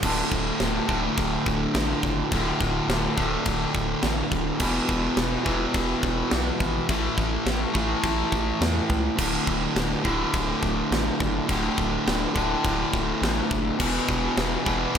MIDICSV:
0, 0, Header, 1, 4, 480
1, 0, Start_track
1, 0, Tempo, 571973
1, 26, Time_signature, 4, 2, 24, 8
1, 6746, Tempo, 575816
1, 12532, End_track
2, 0, Start_track
2, 0, Title_t, "Distorted electric guitar"
2, 0, Program_c, 0, 30
2, 21, Note_on_c, 0, 38, 85
2, 35, Note_on_c, 0, 45, 98
2, 48, Note_on_c, 0, 50, 96
2, 733, Note_off_c, 0, 50, 0
2, 737, Note_on_c, 0, 50, 77
2, 738, Note_off_c, 0, 45, 0
2, 753, Note_on_c, 0, 45, 65
2, 761, Note_off_c, 0, 38, 0
2, 764, Note_on_c, 0, 38, 61
2, 1928, Note_off_c, 0, 50, 0
2, 1929, Note_off_c, 0, 38, 0
2, 1936, Note_off_c, 0, 45, 0
2, 1939, Note_on_c, 0, 38, 93
2, 1955, Note_on_c, 0, 45, 93
2, 1966, Note_on_c, 0, 50, 91
2, 2646, Note_off_c, 0, 50, 0
2, 2649, Note_off_c, 0, 38, 0
2, 2656, Note_on_c, 0, 50, 89
2, 2657, Note_off_c, 0, 45, 0
2, 2671, Note_on_c, 0, 45, 75
2, 2684, Note_on_c, 0, 38, 68
2, 3846, Note_off_c, 0, 50, 0
2, 3852, Note_off_c, 0, 38, 0
2, 3854, Note_off_c, 0, 45, 0
2, 3855, Note_on_c, 0, 40, 91
2, 3872, Note_on_c, 0, 47, 99
2, 3882, Note_on_c, 0, 52, 101
2, 4566, Note_off_c, 0, 40, 0
2, 4570, Note_off_c, 0, 52, 0
2, 4573, Note_on_c, 0, 52, 96
2, 4574, Note_off_c, 0, 47, 0
2, 4590, Note_on_c, 0, 47, 74
2, 4602, Note_on_c, 0, 40, 69
2, 5765, Note_off_c, 0, 52, 0
2, 5772, Note_off_c, 0, 40, 0
2, 5773, Note_off_c, 0, 47, 0
2, 5776, Note_on_c, 0, 45, 87
2, 5789, Note_on_c, 0, 52, 104
2, 5803, Note_on_c, 0, 57, 112
2, 6487, Note_off_c, 0, 45, 0
2, 6487, Note_off_c, 0, 57, 0
2, 6490, Note_on_c, 0, 57, 76
2, 6494, Note_off_c, 0, 52, 0
2, 6508, Note_on_c, 0, 52, 77
2, 6520, Note_on_c, 0, 45, 65
2, 7685, Note_off_c, 0, 45, 0
2, 7688, Note_on_c, 0, 38, 91
2, 7689, Note_off_c, 0, 52, 0
2, 7703, Note_on_c, 0, 45, 89
2, 7712, Note_off_c, 0, 57, 0
2, 7715, Note_on_c, 0, 50, 106
2, 8405, Note_off_c, 0, 50, 0
2, 8407, Note_off_c, 0, 45, 0
2, 8408, Note_on_c, 0, 50, 83
2, 8426, Note_on_c, 0, 45, 79
2, 8432, Note_off_c, 0, 38, 0
2, 8435, Note_on_c, 0, 38, 67
2, 9599, Note_off_c, 0, 50, 0
2, 9601, Note_off_c, 0, 38, 0
2, 9608, Note_off_c, 0, 45, 0
2, 9611, Note_on_c, 0, 38, 86
2, 9627, Note_on_c, 0, 45, 106
2, 9639, Note_on_c, 0, 50, 104
2, 10322, Note_off_c, 0, 38, 0
2, 10323, Note_off_c, 0, 50, 0
2, 10330, Note_off_c, 0, 45, 0
2, 10333, Note_on_c, 0, 50, 81
2, 10347, Note_on_c, 0, 45, 80
2, 10361, Note_on_c, 0, 38, 67
2, 11525, Note_off_c, 0, 50, 0
2, 11532, Note_off_c, 0, 45, 0
2, 11533, Note_off_c, 0, 38, 0
2, 11536, Note_on_c, 0, 40, 91
2, 11553, Note_on_c, 0, 47, 91
2, 11566, Note_on_c, 0, 52, 98
2, 12248, Note_off_c, 0, 40, 0
2, 12248, Note_off_c, 0, 52, 0
2, 12256, Note_off_c, 0, 47, 0
2, 12258, Note_on_c, 0, 52, 81
2, 12273, Note_on_c, 0, 47, 82
2, 12284, Note_on_c, 0, 40, 67
2, 12532, Note_off_c, 0, 40, 0
2, 12532, Note_off_c, 0, 47, 0
2, 12532, Note_off_c, 0, 52, 0
2, 12532, End_track
3, 0, Start_track
3, 0, Title_t, "Analog synth bass"
3, 0, Program_c, 1, 38
3, 25, Note_on_c, 1, 26, 111
3, 190, Note_off_c, 1, 26, 0
3, 266, Note_on_c, 1, 26, 105
3, 431, Note_off_c, 1, 26, 0
3, 505, Note_on_c, 1, 26, 90
3, 670, Note_off_c, 1, 26, 0
3, 746, Note_on_c, 1, 26, 97
3, 911, Note_off_c, 1, 26, 0
3, 989, Note_on_c, 1, 26, 89
3, 1153, Note_off_c, 1, 26, 0
3, 1230, Note_on_c, 1, 26, 90
3, 1394, Note_off_c, 1, 26, 0
3, 1466, Note_on_c, 1, 33, 102
3, 1631, Note_off_c, 1, 33, 0
3, 1708, Note_on_c, 1, 30, 84
3, 1872, Note_off_c, 1, 30, 0
3, 1949, Note_on_c, 1, 26, 97
3, 2113, Note_off_c, 1, 26, 0
3, 2189, Note_on_c, 1, 26, 106
3, 2353, Note_off_c, 1, 26, 0
3, 2418, Note_on_c, 1, 26, 92
3, 2585, Note_off_c, 1, 26, 0
3, 2666, Note_on_c, 1, 26, 93
3, 2831, Note_off_c, 1, 26, 0
3, 2907, Note_on_c, 1, 26, 98
3, 3071, Note_off_c, 1, 26, 0
3, 3147, Note_on_c, 1, 26, 92
3, 3311, Note_off_c, 1, 26, 0
3, 3383, Note_on_c, 1, 33, 99
3, 3548, Note_off_c, 1, 33, 0
3, 3623, Note_on_c, 1, 26, 94
3, 3788, Note_off_c, 1, 26, 0
3, 3863, Note_on_c, 1, 28, 94
3, 4028, Note_off_c, 1, 28, 0
3, 4106, Note_on_c, 1, 28, 97
3, 4270, Note_off_c, 1, 28, 0
3, 4338, Note_on_c, 1, 28, 94
3, 4504, Note_off_c, 1, 28, 0
3, 4585, Note_on_c, 1, 28, 89
3, 4749, Note_off_c, 1, 28, 0
3, 4822, Note_on_c, 1, 28, 89
3, 4988, Note_off_c, 1, 28, 0
3, 5061, Note_on_c, 1, 28, 96
3, 5227, Note_off_c, 1, 28, 0
3, 5302, Note_on_c, 1, 35, 99
3, 5467, Note_off_c, 1, 35, 0
3, 5542, Note_on_c, 1, 32, 86
3, 5708, Note_off_c, 1, 32, 0
3, 5784, Note_on_c, 1, 33, 98
3, 5949, Note_off_c, 1, 33, 0
3, 6023, Note_on_c, 1, 33, 96
3, 6189, Note_off_c, 1, 33, 0
3, 6259, Note_on_c, 1, 33, 84
3, 6426, Note_off_c, 1, 33, 0
3, 6505, Note_on_c, 1, 33, 100
3, 6670, Note_off_c, 1, 33, 0
3, 6747, Note_on_c, 1, 33, 97
3, 6910, Note_off_c, 1, 33, 0
3, 6985, Note_on_c, 1, 33, 93
3, 7149, Note_off_c, 1, 33, 0
3, 7222, Note_on_c, 1, 40, 101
3, 7386, Note_off_c, 1, 40, 0
3, 7463, Note_on_c, 1, 37, 94
3, 7627, Note_off_c, 1, 37, 0
3, 7702, Note_on_c, 1, 26, 104
3, 7866, Note_off_c, 1, 26, 0
3, 7941, Note_on_c, 1, 26, 100
3, 8105, Note_off_c, 1, 26, 0
3, 8176, Note_on_c, 1, 26, 84
3, 8342, Note_off_c, 1, 26, 0
3, 8424, Note_on_c, 1, 26, 101
3, 8587, Note_off_c, 1, 26, 0
3, 8661, Note_on_c, 1, 26, 94
3, 8825, Note_off_c, 1, 26, 0
3, 8906, Note_on_c, 1, 26, 96
3, 9068, Note_off_c, 1, 26, 0
3, 9141, Note_on_c, 1, 33, 92
3, 9305, Note_off_c, 1, 33, 0
3, 9388, Note_on_c, 1, 30, 87
3, 9549, Note_off_c, 1, 30, 0
3, 9629, Note_on_c, 1, 26, 107
3, 9790, Note_off_c, 1, 26, 0
3, 9866, Note_on_c, 1, 26, 95
3, 10029, Note_off_c, 1, 26, 0
3, 10105, Note_on_c, 1, 26, 80
3, 10268, Note_off_c, 1, 26, 0
3, 10347, Note_on_c, 1, 26, 96
3, 10509, Note_off_c, 1, 26, 0
3, 10589, Note_on_c, 1, 26, 99
3, 10751, Note_off_c, 1, 26, 0
3, 10827, Note_on_c, 1, 26, 90
3, 10990, Note_off_c, 1, 26, 0
3, 11063, Note_on_c, 1, 33, 103
3, 11227, Note_off_c, 1, 33, 0
3, 11310, Note_on_c, 1, 30, 95
3, 11472, Note_off_c, 1, 30, 0
3, 11548, Note_on_c, 1, 28, 99
3, 11711, Note_off_c, 1, 28, 0
3, 11790, Note_on_c, 1, 28, 100
3, 11953, Note_off_c, 1, 28, 0
3, 12025, Note_on_c, 1, 28, 88
3, 12190, Note_off_c, 1, 28, 0
3, 12270, Note_on_c, 1, 28, 91
3, 12433, Note_off_c, 1, 28, 0
3, 12532, End_track
4, 0, Start_track
4, 0, Title_t, "Drums"
4, 23, Note_on_c, 9, 49, 123
4, 23, Note_on_c, 9, 52, 63
4, 24, Note_on_c, 9, 36, 122
4, 107, Note_off_c, 9, 49, 0
4, 107, Note_off_c, 9, 52, 0
4, 108, Note_off_c, 9, 36, 0
4, 265, Note_on_c, 9, 36, 99
4, 349, Note_off_c, 9, 36, 0
4, 502, Note_on_c, 9, 52, 58
4, 504, Note_on_c, 9, 38, 106
4, 586, Note_off_c, 9, 52, 0
4, 588, Note_off_c, 9, 38, 0
4, 746, Note_on_c, 9, 36, 88
4, 830, Note_off_c, 9, 36, 0
4, 987, Note_on_c, 9, 36, 114
4, 988, Note_on_c, 9, 52, 58
4, 1071, Note_off_c, 9, 36, 0
4, 1072, Note_off_c, 9, 52, 0
4, 1228, Note_on_c, 9, 36, 97
4, 1312, Note_off_c, 9, 36, 0
4, 1465, Note_on_c, 9, 52, 67
4, 1467, Note_on_c, 9, 38, 115
4, 1549, Note_off_c, 9, 52, 0
4, 1551, Note_off_c, 9, 38, 0
4, 1705, Note_on_c, 9, 36, 89
4, 1789, Note_off_c, 9, 36, 0
4, 1946, Note_on_c, 9, 36, 114
4, 1946, Note_on_c, 9, 52, 71
4, 2030, Note_off_c, 9, 36, 0
4, 2030, Note_off_c, 9, 52, 0
4, 2186, Note_on_c, 9, 36, 98
4, 2270, Note_off_c, 9, 36, 0
4, 2429, Note_on_c, 9, 52, 69
4, 2432, Note_on_c, 9, 38, 113
4, 2513, Note_off_c, 9, 52, 0
4, 2516, Note_off_c, 9, 38, 0
4, 2665, Note_on_c, 9, 36, 85
4, 2749, Note_off_c, 9, 36, 0
4, 2899, Note_on_c, 9, 52, 66
4, 2904, Note_on_c, 9, 36, 115
4, 2983, Note_off_c, 9, 52, 0
4, 2988, Note_off_c, 9, 36, 0
4, 3144, Note_on_c, 9, 36, 85
4, 3228, Note_off_c, 9, 36, 0
4, 3378, Note_on_c, 9, 52, 69
4, 3380, Note_on_c, 9, 38, 108
4, 3462, Note_off_c, 9, 52, 0
4, 3464, Note_off_c, 9, 38, 0
4, 3623, Note_on_c, 9, 36, 93
4, 3707, Note_off_c, 9, 36, 0
4, 3857, Note_on_c, 9, 49, 102
4, 3857, Note_on_c, 9, 52, 65
4, 3862, Note_on_c, 9, 36, 109
4, 3941, Note_off_c, 9, 49, 0
4, 3941, Note_off_c, 9, 52, 0
4, 3946, Note_off_c, 9, 36, 0
4, 4103, Note_on_c, 9, 36, 94
4, 4187, Note_off_c, 9, 36, 0
4, 4337, Note_on_c, 9, 52, 66
4, 4340, Note_on_c, 9, 38, 112
4, 4421, Note_off_c, 9, 52, 0
4, 4424, Note_off_c, 9, 38, 0
4, 4582, Note_on_c, 9, 36, 89
4, 4666, Note_off_c, 9, 36, 0
4, 4817, Note_on_c, 9, 52, 67
4, 4821, Note_on_c, 9, 36, 114
4, 4901, Note_off_c, 9, 52, 0
4, 4904, Note_off_c, 9, 36, 0
4, 5061, Note_on_c, 9, 36, 89
4, 5145, Note_off_c, 9, 36, 0
4, 5296, Note_on_c, 9, 52, 58
4, 5299, Note_on_c, 9, 38, 119
4, 5380, Note_off_c, 9, 52, 0
4, 5383, Note_off_c, 9, 38, 0
4, 5542, Note_on_c, 9, 36, 100
4, 5626, Note_off_c, 9, 36, 0
4, 5783, Note_on_c, 9, 36, 118
4, 5785, Note_on_c, 9, 52, 67
4, 5867, Note_off_c, 9, 36, 0
4, 5869, Note_off_c, 9, 52, 0
4, 6023, Note_on_c, 9, 36, 89
4, 6107, Note_off_c, 9, 36, 0
4, 6263, Note_on_c, 9, 52, 61
4, 6265, Note_on_c, 9, 38, 100
4, 6347, Note_off_c, 9, 52, 0
4, 6349, Note_off_c, 9, 38, 0
4, 6504, Note_on_c, 9, 36, 82
4, 6588, Note_off_c, 9, 36, 0
4, 6743, Note_on_c, 9, 52, 68
4, 6744, Note_on_c, 9, 36, 113
4, 6826, Note_off_c, 9, 52, 0
4, 6827, Note_off_c, 9, 36, 0
4, 6983, Note_on_c, 9, 36, 97
4, 7067, Note_off_c, 9, 36, 0
4, 7226, Note_on_c, 9, 52, 65
4, 7229, Note_on_c, 9, 38, 112
4, 7310, Note_off_c, 9, 52, 0
4, 7312, Note_off_c, 9, 38, 0
4, 7462, Note_on_c, 9, 36, 91
4, 7546, Note_off_c, 9, 36, 0
4, 7703, Note_on_c, 9, 36, 118
4, 7704, Note_on_c, 9, 49, 102
4, 7704, Note_on_c, 9, 52, 63
4, 7786, Note_off_c, 9, 36, 0
4, 7787, Note_off_c, 9, 49, 0
4, 7787, Note_off_c, 9, 52, 0
4, 7942, Note_on_c, 9, 36, 99
4, 8025, Note_off_c, 9, 36, 0
4, 8182, Note_on_c, 9, 52, 67
4, 8185, Note_on_c, 9, 38, 107
4, 8266, Note_off_c, 9, 52, 0
4, 8268, Note_off_c, 9, 38, 0
4, 8422, Note_on_c, 9, 36, 86
4, 8506, Note_off_c, 9, 36, 0
4, 8663, Note_on_c, 9, 36, 118
4, 8667, Note_on_c, 9, 52, 59
4, 8746, Note_off_c, 9, 36, 0
4, 8750, Note_off_c, 9, 52, 0
4, 8903, Note_on_c, 9, 36, 87
4, 8987, Note_off_c, 9, 36, 0
4, 9149, Note_on_c, 9, 52, 56
4, 9152, Note_on_c, 9, 38, 111
4, 9232, Note_off_c, 9, 52, 0
4, 9235, Note_off_c, 9, 38, 0
4, 9385, Note_on_c, 9, 36, 94
4, 9468, Note_off_c, 9, 36, 0
4, 9624, Note_on_c, 9, 36, 123
4, 9628, Note_on_c, 9, 52, 70
4, 9708, Note_off_c, 9, 36, 0
4, 9712, Note_off_c, 9, 52, 0
4, 9864, Note_on_c, 9, 36, 88
4, 9948, Note_off_c, 9, 36, 0
4, 10109, Note_on_c, 9, 52, 60
4, 10112, Note_on_c, 9, 38, 104
4, 10193, Note_off_c, 9, 52, 0
4, 10195, Note_off_c, 9, 38, 0
4, 10345, Note_on_c, 9, 36, 90
4, 10429, Note_off_c, 9, 36, 0
4, 10586, Note_on_c, 9, 36, 127
4, 10590, Note_on_c, 9, 52, 69
4, 10670, Note_off_c, 9, 36, 0
4, 10673, Note_off_c, 9, 52, 0
4, 10827, Note_on_c, 9, 36, 92
4, 10911, Note_off_c, 9, 36, 0
4, 11075, Note_on_c, 9, 52, 70
4, 11078, Note_on_c, 9, 38, 121
4, 11158, Note_off_c, 9, 52, 0
4, 11161, Note_off_c, 9, 38, 0
4, 11307, Note_on_c, 9, 36, 89
4, 11390, Note_off_c, 9, 36, 0
4, 11548, Note_on_c, 9, 36, 114
4, 11548, Note_on_c, 9, 52, 76
4, 11548, Note_on_c, 9, 57, 109
4, 11631, Note_off_c, 9, 36, 0
4, 11631, Note_off_c, 9, 52, 0
4, 11631, Note_off_c, 9, 57, 0
4, 11787, Note_on_c, 9, 36, 100
4, 11870, Note_off_c, 9, 36, 0
4, 12026, Note_on_c, 9, 52, 65
4, 12028, Note_on_c, 9, 38, 110
4, 12109, Note_off_c, 9, 52, 0
4, 12112, Note_off_c, 9, 38, 0
4, 12269, Note_on_c, 9, 36, 91
4, 12352, Note_off_c, 9, 36, 0
4, 12532, End_track
0, 0, End_of_file